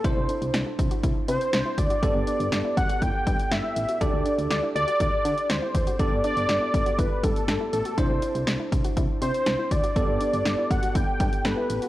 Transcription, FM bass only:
X:1
M:4/4
L:1/16
Q:1/4=121
K:G
V:1 name="FM bass" clef=bass
C,, C,, z C,, C,, z C,, z C,, z C, z C,, z D,, z | G,,, G,,, z G,,, G,,, z G,,, z G,,, z G,, z G,,, z A,,, z | D,, D,, z D,, D,, z D,, z D,, z D, z D,, z E,, z | G,,, G,,, z G,,, G,,, z G,,, z G,,, z G,, z G,,, z A,,, z |
C,, C,, z C,, C,, z C,, z C,, z C, z C,, z D,, z | G,,, G,,, z G,,, G,,, z G,,, z G,,, z G,, z G,,, z A,,, z |]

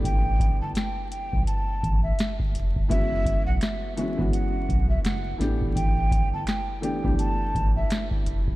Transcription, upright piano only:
X:1
M:4/4
L:1/16
Q:"Swing 16ths" 1/4=84
K:Amix
V:1 name="Upright piano"
z16 | [E,^G,B,CF]4- [E,G,B,CF] z [E,G,B,CF] [E,G,B,CF]6- [E,G,B,CF] [E,A,B,D=G]2- | [E,A,B,DG]4- [E,A,B,DG] z [E,A,B,DG] [E,A,B,DG]6- [E,A,B,DG] z2 |]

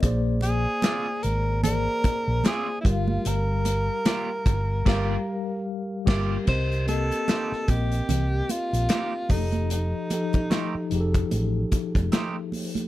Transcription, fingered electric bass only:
X:1
M:4/4
L:1/16
Q:"Swing 16ths" 1/4=74
K:Gphr
V:1 name="Fingered electric bass" clef=bass
B,,,4 z2 A,,,4 z B,,, z2 G,,,2 | G,,,4 z2 G,,,2 G,,,2 z4 G,,,2 | [K:Cdor] C,,4 z2 B,,,2 C,,2 z B,,, z2 F,,,2- | F,,,2 z4 F,,,2 A,,,2 z F,,, z4 |]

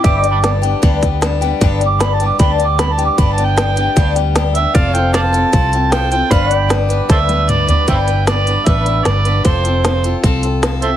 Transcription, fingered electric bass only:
X:1
M:4/4
L:1/8
Q:1/4=153
K:Gmix
V:1 name="Fingered electric bass" clef=bass
G,,,4 D,,4 | G,,,4 D,,4 | G,,,4 D,,4 | F,,,4 C,,4 |
G,,,4 D,,4 | G,,,4 A,,,2 G,,,2 | F,,,4 C,,4 |]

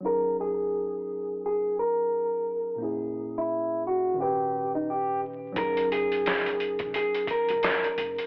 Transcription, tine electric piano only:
X:1
M:4/4
L:1/8
Q:"Swing 16ths" 1/4=87
K:F#
V:1 name="Tine electric piano"
[F,CDGA]8 | [A,,A,C=EG]4 [A,,D,C=GB]4 | [F,CDGA]8 |]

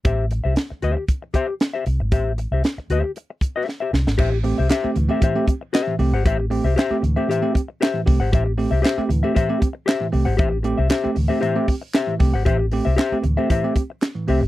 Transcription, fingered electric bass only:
X:1
M:4/4
L:1/16
Q:1/4=116
K:Am
V:1 name="Fingered electric bass" clef=bass
A,,,3 C,, z2 D,, z6 z C,, ^G,,, | A,,,3 C,, z2 D,, z6 z C,, ^G,,, | A,,,3 C,, z2 D,, z6 z C,, ^G,,, | A,,,3 C,, z2 D,, z6 z C,, ^G,,, |
A,,,3 C,, z2 D,, z6 z C,, ^G,,, | A,,,3 C,, z2 D,, z6 z C,, ^G,,, | A,,,3 C,, z2 D,, z6 z C,, ^G,,, |]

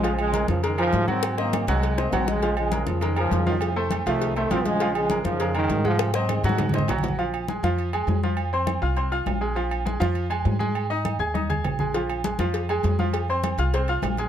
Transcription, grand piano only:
X:1
M:4/4
L:1/8
Q:1/4=202
K:Bbm
V:1 name="Grand piano"
[F,Ff]2 [A,AB]2 [A,AB] [A,AB]2 [G,Gg]- | [G,Gg] [Cce]2 [G,Gg]2 [Cce] [G,Gg]2 | [F,Ff]2 [A,AB]2 [A,AB] [A,AB]2 [F,Ff]- | [F,Ff] [=A,=Ac]2 [F,Ff]2 [A,Ac] [F,Ff]2 |
[F,Ff]2 [A,AB]2 [A,AB] [A,AB]2 [A,Ag]- | [A,Ag] [Cce]2 [G,Gg]2 [Cce] [G,Gg]2 | [F,Ff]2 [A,Aa] [F,Ff]2 [A,Aa]2 [F,Ff]- | [F,Ff] [Ccc']2 [Fff'] [Ccc'] [Fff']2 [A,Aa] |
[F,Ff]2 [A,Aa] [F,Ff]2 [A,Aa]2 [A,Aa]- | [A,Aa] [Eee']2 [Aaa'] [Eee'] [Aaa']2 [A,Aa] | [F,Ff]2 [A,Aa] [F,Ff]2 [A,Aa]2 [F,Ff]- | [F,Ff] [Ccc']2 [Fff'] [Ccc'] [Fff']2 [A,Aa] |]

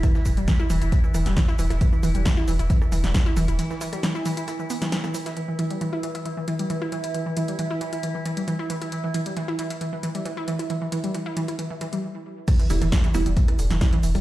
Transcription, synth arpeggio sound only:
X:1
M:4/4
L:1/16
Q:1/4=135
K:Em
V:1 name="Synth arpeggio sound" clef=bass
E, E, E, G, E, E E, E E, E, E, G, E, E E, E | E, E, E, G, E, E E, E E, E, E, G, E, E E, E | E, E, E, G, E, E E, E E, E, B, E, E, E, E, E, | E, E, E, G, E, E E, E E, E, E, G, E, E E, E |
E, E, E, G, E, E E, E E, E, E, G, E, E E, E | E, E, E, G, E, E E, E E, E, E, G, E, E E, E | E, E, E, G, E, E E, E E, E, E, G, z4 | E, E, D, E, E E, E, G, E, E, D, E, E E, E, G, |]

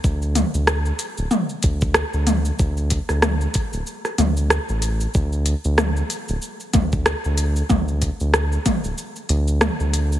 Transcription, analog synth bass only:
X:1
M:4/4
L:1/16
Q:"Swing 16ths" 1/4=94
K:none
V:1 name="Analog synth bass" clef=bass
D,,2 z D,,2 z2 D,,, z2 D,,2 z D,,2 z | D,,2 z D,,2 z2 D,,, z2 D,,2 z A,,,2 z | D,,2 z D,,2 z2 D,,, z2 D,,2 z D,,2 z | D,,2 z D,,2 z2 D,,, z2 D,,2 z D,,2 z |]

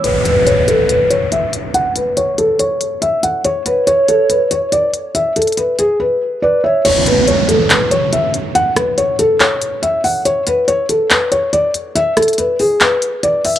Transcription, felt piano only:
X:1
M:4/4
L:1/8
Q:1/4=141
K:C#phr
V:1 name="Felt piano"
c B c A B c e z | f B c A c2 e f | c B c A B c d z | e A B G B2 d e |
c B c A B c e z | f B c A c2 e f | c B c A B c d z | e A B G B2 d e |]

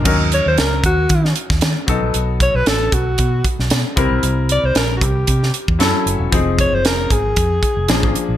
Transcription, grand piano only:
X:1
M:4/4
L:1/8
Q:"Swing 16ths" 1/4=115
K:Fphr
V:1 name="Grand piano"
[G,DEB]6- [G,DEB] [^F,=B,^D=A]- | [^F,=B,^D=A]6- [F,B,DA] [=G,C=E_B]- | [=G,C=EB]6 [_G,D_F=A]2 | [F,CEA]6 [F,B,=DA]2 |]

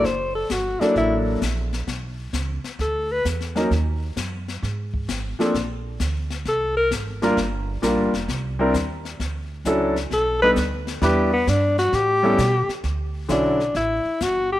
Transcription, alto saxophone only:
X:1
M:4/4
L:1/8
Q:"Swing" 1/4=131
K:D
V:1 name="Alto saxophone"
=c A F D E z3 | z4 A B z2 | z8 | z4 A _B z2 |
z8 | z4 A B z2 | G B, D F G3 z | z2 D2 E2 F G |]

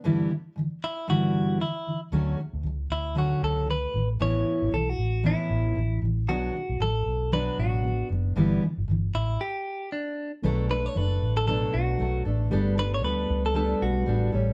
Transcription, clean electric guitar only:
X:1
M:4/4
L:1/16
Q:"Swing 16ths" 1/4=115
K:Glyd
V:1 name="Clean electric guitar"
z6 E2 F4 E3 z | z6 E2 F2 A2 B3 z | c4 A F3 E6 z2 | F4 A4 B2 F4 z2 |
z6 E2 G4 D3 z | z2 B c B3 A A2 F4 z2 | z2 B c B3 A A2 F4 z2 |]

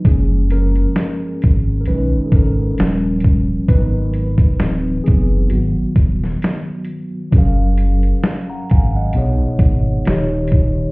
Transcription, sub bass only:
X:1
M:4/4
L:1/16
Q:"Swing 16ths" 1/4=66
K:F#
V:1 name="Sub bass" clef=bass
F,,,4 z2 G,,,2 B,,, G,,, G,,,2 D,,,4 | G,,,4 =D,,,2 F,,,2 G,,, ^D,,, D,,,2 z4 | F,,,4 z2 G,,,2 B,,, G,,, G,,,2 D,,,4 |]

